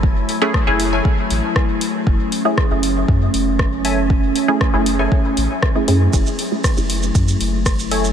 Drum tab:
RD |----------------|----------------|----------------|x---x---x---x---|
HH |--o---o---o---o-|--o---o---o---o-|--o---o---o---o-|--o---o---o---o-|
SH |----------------|----------------|----------------|xx--xx-xxx--xx-x|
SD |----r-------r---|----r-------r---|----r-------r---|----r-------r---|
BD |o---o---o---o---|o---o---o---o---|o---o---o---o---|o---o---o---o---|